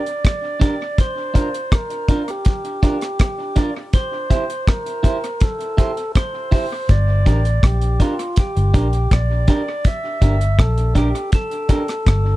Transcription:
0.00 0.61 D5 medium
0.06 closed hi-hat soft
0.25 kick loud
0.25 cross-stick loud
0.25 closed hi-hat loud
0.60 0.73 D4 medium
0.60 0.74 G4 medium
0.60 0.74 A#4 medium
0.60 0.99 D5 medium
0.60 kick loud
0.60 closed hi-hat medium
0.98 1.75 C5 loud
0.98 kick loud
0.98 closed hi-hat medium
1.34 1.47 D4 medium
1.34 1.48 F4 medium
1.34 1.48 A#4 medium
1.34 kick medium
1.34 closed hi-hat medium
1.54 closed hi-hat medium
1.72 2.31 A#4 medium
1.72 kick loud
1.72 cross-stick loud
1.72 closed hi-hat medium
1.90 closed hi-hat soft
2.08 2.21 D4 medium
2.08 2.22 F4 medium
2.08 2.22 A#4 medium
2.08 kick medium
2.08 closed hi-hat medium
2.28 3.62 G4 medium
2.28 closed hi-hat medium
2.45 kick loud
2.45 closed hi-hat medium
2.65 closed hi-hat soft
2.83 2.95 D4 medium
2.83 2.96 F4 medium
2.83 2.96 A#4 medium
2.83 kick medium
2.83 closed hi-hat medium
3.01 cross-stick medium
3.01 closed hi-hat medium
3.19 kick loud
3.19 cross-stick loud
3.19 closed hi-hat loud
3.56 3.69 D4 medium
3.56 3.70 F4 medium
3.56 3.70 A#4 medium
3.56 3.74 D5 medium
3.56 kick medium
3.56 closed hi-hat medium
3.93 4.70 C5 loud
3.93 kick loud
3.93 closed hi-hat medium
4.30 4.43 E4 medium
4.30 4.44 G4 medium
4.30 4.44 C5 medium
4.30 kick medium
4.30 closed hi-hat medium
4.50 closed hi-hat medium
4.67 5.44 A#4 medium
4.67 kick loud
4.67 cross-stick loud
4.67 closed hi-hat medium
4.86 closed hi-hat medium
5.03 5.16 E4 medium
5.03 5.17 G4 medium
5.03 5.17 C5 medium
5.03 kick medium
5.03 closed hi-hat medium
5.24 closed hi-hat soft
5.40 6.12 A4 medium
5.40 kick loud
5.40 closed hi-hat medium
5.60 closed hi-hat soft
5.77 5.91 E4 medium
5.77 5.91 G4 medium
5.77 5.92 C5 medium
5.77 kick medium
5.77 closed hi-hat medium
5.97 closed hi-hat medium
6.15 6.92 C5 medium
6.15 kick loud
6.15 cross-stick loud
6.15 closed hi-hat medium
6.51 6.65 E4 medium
6.51 6.65 G4 medium
6.51 6.65 C5 medium
6.51 kick medium
6.51 open hi-hat medium
6.89 7.24 G1 loud
6.89 7.66 D5 loud
6.89 kick medium
6.89 closed hi-hat medium
7.26 7.62 A1 medium
7.26 7.39 D4 medium
7.26 7.39 G4 medium
7.26 7.39 A#4 medium
7.26 kick medium
7.26 closed hi-hat medium
7.45 closed hi-hat medium
7.63 7.98 A#1 medium
7.63 8.02 G4 medium
7.63 kick loud
7.63 cross-stick loud
7.63 closed hi-hat medium
7.81 closed hi-hat medium
8.00 8.13 D4 medium
8.00 8.39 F4 medium
8.00 8.13 G4 medium
8.00 8.14 A#4 medium
8.00 kick medium
8.00 closed hi-hat medium
8.19 closed hi-hat medium
8.36 9.14 G4 medium
8.36 kick loud
8.36 closed hi-hat medium
8.57 8.74 G1 medium
8.57 closed hi-hat soft
8.74 9.09 A#1 medium
8.74 8.87 D4 medium
8.74 8.87 G4 medium
8.74 8.87 A#4 medium
8.74 kick loud
8.74 closed hi-hat medium
8.93 closed hi-hat medium
9.11 9.46 A#1 medium
9.11 9.88 D5 medium
9.11 kick loud
9.11 cross-stick loud
9.11 closed hi-hat medium
9.48 9.61 D4 medium
9.48 9.61 G4 medium
9.48 9.61 A#4 medium
9.48 kick loud
9.48 closed hi-hat medium
9.85 10.62 E5 loud
9.85 kick medium
9.85 closed hi-hat medium
10.21 10.57 G1 medium
10.21 10.34 D4 medium
10.21 10.35 G4 medium
10.21 10.35 A#4 medium
10.21 kick medium
10.21 closed hi-hat medium
10.41 closed hi-hat medium
10.59 11.12 A#1 medium
10.59 10.94 A4 medium
10.59 kick loud
10.59 cross-stick loud
10.59 closed hi-hat medium
10.78 closed hi-hat medium
10.95 11.08 D4 medium
10.95 11.08 G4 medium
10.95 11.31 G4 medium
10.95 11.09 A#4 medium
10.95 kick medium
10.95 closed hi-hat medium
11.15 closed hi-hat soft
11.32 12.37 A4 medium
11.32 kick loud
11.32 closed hi-hat medium
11.51 closed hi-hat soft
11.69 11.82 D4 medium
11.69 11.82 G4 medium
11.69 11.83 A#4 loud
11.69 kick medium
11.69 closed hi-hat medium
11.88 cross-stick medium
11.88 closed hi-hat medium
12.06 12.37 G1 medium
12.06 kick loud
12.06 cross-stick loud
12.06 closed hi-hat medium

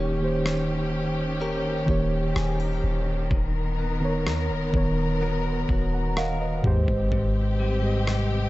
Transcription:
0.00 1.84 D#1 loud
0.00 0.20 D#3 loud
0.00 3.30 D#3 medium
0.00 6.61 D#3 medium
0.00 0.21 A#3 medium
0.00 1.39 C#4 medium
0.00 3.27 C#4 medium
0.00 0.22 G4 medium
0.00 3.27 G4 medium
0.00 1.90 C#5 loud
0.20 1.42 D#3 medium
0.20 1.43 A#3 medium
0.20 1.44 G4 medium
0.24 1.44 C5 medium
0.46 cross-stick loud
1.40 3.41 C#4 medium
1.40 1.87 G4 medium
1.40 2.36 A#4 medium
1.86 2.34 D#1 loud
1.86 3.26 D#3 medium
1.86 3.27 A#3 medium
1.86 3.41 G4 medium
1.86 3.28 G4 medium
1.86 kick medium
1.90 3.28 C#5 medium
2.36 2.82 D#1 loud
2.36 2.60 G#4 medium
2.36 cross-stick loud
2.60 3.41 A#4 medium
2.84 3.29 D#1 loud
3.31 4.28 D#1 loud
3.31 6.81 D#3 medium
3.31 6.61 B3 medium
3.31 6.61 A#4 medium
3.31 kick loud
3.79 5.20 B3 medium
4.00 4.53 D#3 medium
4.00 4.54 B3 medium
4.00 4.55 A#4 medium
4.05 4.56 C#5 medium
4.26 4.52 D#2 medium
4.26 cross-stick loud
4.50 4.73 D#1 medium
4.72 5.65 D#1 loud
4.72 5.42 D#3 medium
4.72 5.43 B3 medium
4.72 5.44 A#4 medium
4.72 kick loud
4.76 5.45 C#5 medium
5.21 6.74 B3 medium
5.21 5.68 F#4 medium
5.21 6.16 A#4 medium
5.69 6.61 D#1 medium
5.69 6.74 F#4 medium
5.69 kick medium
5.93 6.16 F#5 medium
5.93 6.16 A#5 medium
6.17 6.74 A#4 medium
6.17 6.40 D#5 medium
6.17 6.39 F5 medium
6.17 6.40 F#5 medium
6.17 cross-stick loud
6.41 6.86 B4 medium
6.41 7.08 D#5 medium
6.62 6.87 D#2 loud
6.62 7.59 G#2 medium
6.62 7.11 G#2 medium
6.62 8.49 C3 medium
6.62 7.59 G#3 medium
6.62 8.49 C4 medium
6.62 8.49 G4 medium
6.62 7.60 G4 medium
6.62 kick medium
6.67 7.61 C5 medium
6.88 7.11 G#1 loud
6.88 kick medium
7.12 8.49 G#1 loud
7.12 8.49 G#2 medium
7.12 kick loud
7.60 8.49 G3 medium
7.81 8.49 G#2 medium
7.81 8.49 G#3 medium
7.81 8.49 G4 medium
7.86 8.49 D#5 medium
8.07 cross-stick loud

